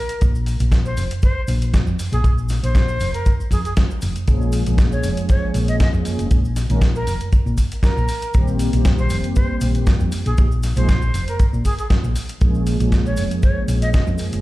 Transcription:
Already playing: A#4
0.09 closed hi-hat, cabasa
0.21 A#1, kick, closed hi-hat, cabasa
0.35 cabasa
0.46 open hi-hat, cabasa
0.59 A#1, closed hi-hat, cabasa
0.72 kick, snare, closed hi-hat, cabasa
0.85 C5, cabasa
0.97 F1, open hi-hat, cabasa
1.11 closed hi-hat, cabasa
1.22 C5, kick, closed hi-hat, cabasa
1.48 A#1, open hi-hat, cabasa
1.62 closed hi-hat, cabasa
1.74 kick, snare, closed hi-hat, cabasa
1.87 F2, cabasa
1.99 muted fingered electric bass stroke, open hi-hat, cabasa
2.12 A#1 G#4, closed hi-hat, cabasa
2.24 A#1, kick, closed hi-hat, cabasa
2.38 cabasa
2.49 snare, open hi-hat, cabasa
2.63 A#1 C5, closed hi-hat, cabasa
2.75 kick, snare, closed hi-hat, cabasa
2.88 cabasa
3.00 F1, open hi-hat, cabasa
3.14 A#4, closed hi-hat, cabasa
3.26 kick, closed hi-hat, cabasa
3.40 muted fingered electric bass stroke, cabasa
3.51 F2 G#4, kick, open hi-hat, cabasa
3.65 G#4, closed hi-hat, cabasa
3.77 kick, snare, closed hi-hat, cabasa
3.91 cabasa
4.02 F1, open hi-hat, cabasa
4.16 closed hi-hat, cabasa
4.27 A#1 F3 G#3 A#3 C#4 G#4, kick, closed hi-hat, cabasa
4.41 cabasa
4.52 open hi-hat, cabasa
4.66 A#1 F3 G#3 A#3 C#4 G#4, closed hi-hat, cabasa
4.78 kick, snare, closed hi-hat, cabasa
4.92 C#5, cabasa
5.03 F1, open hi-hat, cabasa
5.17 closed hi-hat, cabasa
5.29 C#5, kick, closed hi-hat, cabasa
5.54 A#1, open hi-hat, cabasa
5.68 D#5, closed hi-hat, cabasa
5.80 D#5, kick, snare, closed hi-hat, cabasa
5.93 F2, cabasa
6.05 muted fingered electric bass stroke, open hi-hat, cabasa
6.19 F1, closed hi-hat, cabasa
6.30 A#1 D#3 G#3 A#3 C#4 G#4, kick, closed hi-hat, cabasa
6.45 cabasa
6.56 snare, open hi-hat, cabasa
6.70 A#1 D#3 G#3 A#3 C#4 A#4, closed hi-hat, cabasa
6.81 kick, snare, closed hi-hat, cabasa
6.95 A#4, cabasa
7.07 F1, open hi-hat, cabasa
7.20 closed hi-hat, cabasa
7.32 kick, closed hi-hat, cabasa
7.46 A#2, cabasa
7.58 kick, open hi-hat, cabasa
7.71 closed hi-hat, cabasa
7.83 A#4, kick, snare, closed hi-hat, cabasa
7.97 A#1, cabasa
8.08 open hi-hat, cabasa
8.22 closed hi-hat, cabasa
8.34 A#1 D#3 G3 A#3 C4 G4, kick, closed hi-hat, cabasa
8.48 cabasa
8.59 open hi-hat, cabasa
8.72 A#1 D#3 G3 A#3 C4 G4, closed hi-hat, cabasa
8.85 kick, snare, closed hi-hat, cabasa
8.98 C5, cabasa
9.10 F1, open hi-hat, cabasa
9.24 closed hi-hat, cabasa
9.36 C5, kick, closed hi-hat, cabasa
9.61 A#1, open hi-hat, cabasa
9.75 closed hi-hat, cabasa
9.86 kick, snare, closed hi-hat, cabasa
10.00 F2, cabasa
10.12 muted fingered electric bass stroke, open hi-hat, cabasa
10.25 A#1 G#4, closed hi-hat, cabasa
10.37 A#1 F3 G#3 A#3 D#4 G4, kick, closed hi-hat, cabasa
10.52 cabasa
10.63 snare, open hi-hat, cabasa
10.76 A#1 F3 G#3 A#3 D#4 G#4 C5, closed hi-hat, cabasa
10.88 kick, snare, closed hi-hat, cabasa
11.02 cabasa
11.14 F1, open hi-hat, cabasa
11.28 A#4, closed hi-hat, cabasa
11.39 kick, closed hi-hat, cabasa
11.53 A#2, cabasa
11.65 G#4, kick, open hi-hat, cabasa
11.78 G#4, closed hi-hat, cabasa
11.90 kick, snare, closed hi-hat, cabasa
12.04 A#1, cabasa
12.16 open hi-hat, cabasa
12.29 closed hi-hat, cabasa
12.40 A#1 F3 G#3 A#3 C#4 G#4, kick, closed hi-hat, cabasa
12.55 cabasa
12.66 open hi-hat, cabasa
12.79 A#1 F3 G#3 A#3 C#4 G#4, closed hi-hat, cabasa
12.92 kick, snare, closed hi-hat, cabasa
13.06 C#5, cabasa
13.17 F1, open hi-hat, cabasa
13.31 closed hi-hat, cabasa
13.42 C#5, kick, closed hi-hat, cabasa
13.68 A#1, open hi-hat, cabasa
13.82 D#5, closed hi-hat, cabasa
13.93 D#5, kick, snare, closed hi-hat, cabasa
14.07 F2, cabasa
14.18 muted fingered electric bass stroke, open hi-hat, cabasa
14.32 F1, closed hi-hat, cabasa

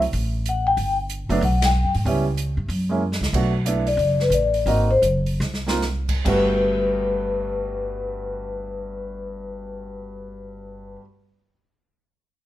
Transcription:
Already playing: C2
0.02 open hi-hat
0.13 A1, open hi-hat
0.46 F#5, closed hi-hat
0.67 G5
0.77 G1, open hi-hat
1.10 closed hi-hat
1.29 F#1 F#3 A3 B3 D4, open hi-hat
1.41 B1 F#5, open hi-hat
1.62 G5, snare, ride
1.84 F#2
1.95 G#2, open hi-hat
2.05 C#2 G3 B3 C#4 E4, open hi-hat
2.38 closed hi-hat
2.57 G2
2.68 F#2, open hi-hat
2.89 G#3 A#3 C#4 E4
3.12 snare
3.21 C#2, snare
3.33 B1 A3 B3 D4 F#4, kick, crash
3.65 A3 B3 D4 E4, closed hi-hat
3.87 D5, open hi-hat
3.97 F#1, open hi-hat
4.20 B4, snare
4.30 A1, closed hi-hat
4.34 D5
4.54 open hi-hat
4.66 G#1 A#3 C4 D#4 F#4 D#5, open hi-hat
4.91 C5
5.02 F#1, closed hi-hat
5.26 open hi-hat
5.40 C2, snare
5.54 snare
5.67 A#3 C4 D#4 F4, snare
5.82 snare
6.09 kick, crash
6.25 G1 G2 G3 A3 B3 F#4 B4, kick, crash

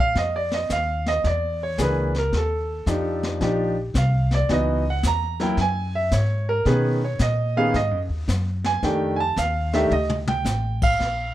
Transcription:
Already playing: A#2
0.00 F5
0.15 F2 D#5, brush sweep, kick, snare
0.36 D5
0.52 D#5, snare
0.70 D#2 F5, kick, snare, hi-hat pedal
1.06 D#5, snare
1.24 E2 D5, brush sweep, kick, snare
1.63 C#5
1.78 C#2 E3 A#3 D4 G#4, kick, snare, hi-hat pedal
1.82 B4
2.15 A#4, snare
2.32 D#2, brush sweep, kick, snare
2.37 A4
2.86 F2 F3 D4 D#4 G4, kick, snare, hi-hat pedal
3.23 snare
3.41 A#1 F3 D4 D#4 G4, brush sweep, kick, snare
3.94 C2 F5, kick, snare, hi-hat pedal
4.31 D5, snare
4.49 C#2 E3 B3 D#4 F#4, brush sweep, kick, snare
4.53 D#5
4.90 F#5
5.03 E2, kick, snare, hi-hat pedal
5.07 A#5
5.40 F#3 A#3 E4 A#4 G5, snare
5.57 F#2, brush sweep, kick, snare
5.61 G#5
5.95 E5
6.12 G#2 C#5, kick, snare, hi-hat pedal
6.49 A#4
6.65 B2 D#3 B3 C#4 G#4 B4, brush sweep, kick, snare
7.04 C#5
7.19 A#2 D#5, kick, snare, hi-hat pedal
7.57 D#3 B3 C#4 G#4 F5
7.74 G#2 D#5, brush sweep, kick, snare
7.91 F#2
8.09 D#2
8.28 F#2, kick, snare, hi-hat pedal
8.64 G#5, snare
8.83 F2 D#3 A3 D4 G4 G5, brush sweep, kick, snare
9.16 G#5
9.20 A5
9.36 D#2 F5, kick, snare, hi-hat pedal
9.73 D#3 A3 D4 G4 E5, snare
9.90 D2 D#5, mid tom
10.10 mid tom
10.28 G5, mid tom
10.45 A1, snare, hi-hat pedal
10.82 F5, kick, crash
10.99 A#1, brush sweep, kick, snare

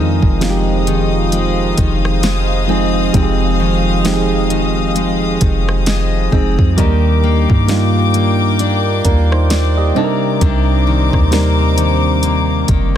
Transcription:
Already playing: F2 D#3 F3 G#3 C4 D4 D#4 G#4 A#4 C5 D#5 F5 D#6
0.23 F1, kick
0.40 F3 G#3 C4 D#4 F4, snare, closed hi-hat
0.50 G4
0.87 D#3, closed hi-hat
1.32 G#3, closed hi-hat
1.78 F1 D#3, kick, closed hi-hat
2.05 cross-stick
2.23 G#3, snare, closed hi-hat
2.68 F3 G#3 C4 D#4 G#4
3.13 F1 F2 F3 G#3 C4 D#4 G4, kick, closed hi-hat
3.22 G#4
3.60 D#3
4.04 F3 G#3 C4 D#4 G4, snare, closed hi-hat
4.13 G#4
4.50 D#3, closed hi-hat
4.96 G#3, closed hi-hat
5.41 F1 D#3, kick, closed hi-hat
5.69 cross-stick
5.86 G#3, snare, closed hi-hat
6.31 F1 F3 G#3 C4 D#4 G#4, kick
6.59 F2, kick
6.77 D#2 D#3 G3 A#3 D4 D#4 G4 A#4 G5 D6, kick, closed hi-hat
7.24 A#3
7.50 G2, kick
7.68 G3 A#3 D4 D#4 F4, snare, closed hi-hat
8.14 A#3, closed hi-hat
8.59 D4, closed hi-hat
9.05 D#2 A#3 D4 A#4, kick, closed hi-hat
9.32 D#4 C5, cross-stick
9.50 D4 F4 D5, snare, closed hi-hat
9.77 G4 D#5
9.95 C3 G3 C4 D4 D#4 A4 C5 A#5 D6
10.04 A#4
10.41 C2 C3 D4, kick, closed hi-hat
10.87 D#3
11.13 D#2, kick, cross-stick
11.31 G3 A#3 C4 D4 D#4 A#4, snare, closed hi-hat
11.78 D#3, closed hi-hat
12.23 A#3, closed hi-hat
12.68 F#1 D#3, kick, closed hi-hat

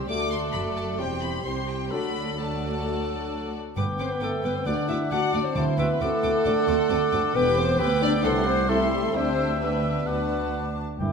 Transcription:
Already playing: G4
0.09 D2 A3 F#4 A4 D5 D6
0.31 C6
0.53 F#1 F#2 B5
0.76 A5
0.99 E1 E2 G3 C4 E4 G4 C5 G5
1.21 B5
1.45 C2 G3 C4 E4 G4 C5 C6
1.68 G5
1.91 D2 F#3 A3 D4 F#4 A4 D5 B5
2.38 F#3 A3 D4 F#4 A4 D5 A5
2.85 A3 F#4
3.76 G1 G2 B3 B4 G5 D6
3.99 G1 G2 B3 C4 B4 C5 D6
4.10 B3 B4
4.21 G1 G2 A3 B3 A4 B4 D6 E6
4.44 G1 G2 B3 B4 D6
4.55 C4 C5
4.66 D2 D3 A3 D4 F#4 D5 F#5 D6
4.88 D2 A3 E4 F#4 E5 D6
5.11 D2 A3 F#4 F#5 A5 D6
5.33 D2 A3 D4 F#4 D5 D6
5.45 C4 C5
5.55 D2 D3 C4 E4 F#4 A5 C6 D6
5.78 D2 B3 C4 F#4 B4 E5 D6
6.00 D2 A3 C4 F#4 A4 F#5 D6
6.23 D2 C4 F#4 D6
6.45 D2 C4 D4 F#4 D6
6.67 D2 C4 F#4 C6 D6
6.89 D2 C4 F#4 D6
7.12 D2 C4 F#4 D6
7.34 E1 E2 B3 G4 B4 G5 D6
7.56 C4 C5
7.78 D2 B3 G4 B4 G5 D6 E6
8.02 D4 D5
8.24 C2 A3 C4 E4 G4 A4 F#5 C6 D6
8.46 C4 C5
8.69 A3 E4 G4 A4 E5 C6
8.91 G3 G4
9.03 A3 A4
9.14 D2 C4 D4 G4 C5 E5 G5 E6
9.61 B3 D4 G4 B4 G5
10.07 D2 D4 F#4 F#5 A5 D6
11.00 G1 G2 E4 G5 D6

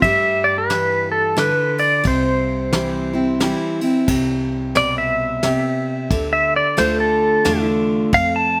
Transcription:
0.02 G2 G3 E5, kick, ride
0.44 D5
0.58 B4
0.70 E3, snare, ride
1.12 A4
1.37 D3 B4, snare, ride
1.78 D5, ride
2.04 C2 C3 C5, kick, ride
2.73 E3 G3 C4 E4, snare, ride
3.13 C4 E4
3.40 E3 G3 C4 E4, snare, ride
3.81 C4 E4, ride
4.08 C2 C3, kick, crash
4.75 B2 D5, snare, ride
4.98 E5
5.43 C3, snare, ride
6.10 D2 D3, kick, ride
6.33 E5
6.56 D5
6.77 D2 D3 A3 D4 F4 C5, snare, ride
7.00 A4
7.45 E2 D3 A3 D4 F4, snare, ride
8.13 F2 F5, kick, ride
8.36 A5

